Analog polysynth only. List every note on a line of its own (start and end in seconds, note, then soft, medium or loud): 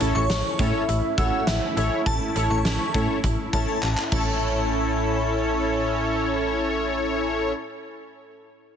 0.00 0.25 C#4 medium
0.00 0.25 E4 medium
0.00 0.25 A4 medium
0.00 0.25 C#5 medium
0.59 0.83 C#4 medium
0.59 0.83 E4 medium
0.59 0.83 A4 medium
0.59 0.83 C#5 medium
1.18 1.42 C#4 medium
1.18 1.42 E4 medium
1.18 1.42 A4 medium
1.18 1.42 C#5 medium
1.77 2.01 C#4 medium
1.77 2.01 E4 medium
1.77 2.01 A4 medium
1.77 2.01 C#5 medium
2.36 2.60 C#4 medium
2.36 2.60 E4 medium
2.36 2.60 A4 medium
2.36 2.60 C#5 medium
2.94 3.19 C#4 medium
2.94 3.19 E4 medium
2.94 3.19 A4 medium
2.94 3.19 C#5 loud
3.53 3.78 C#4 medium
3.53 3.78 E4 medium
3.53 3.78 A4 medium
3.53 3.78 C#5 loud
4.12 7.53 C#4 medium
4.12 7.53 E4 medium
4.12 7.53 A4 medium
4.12 7.53 C#5 medium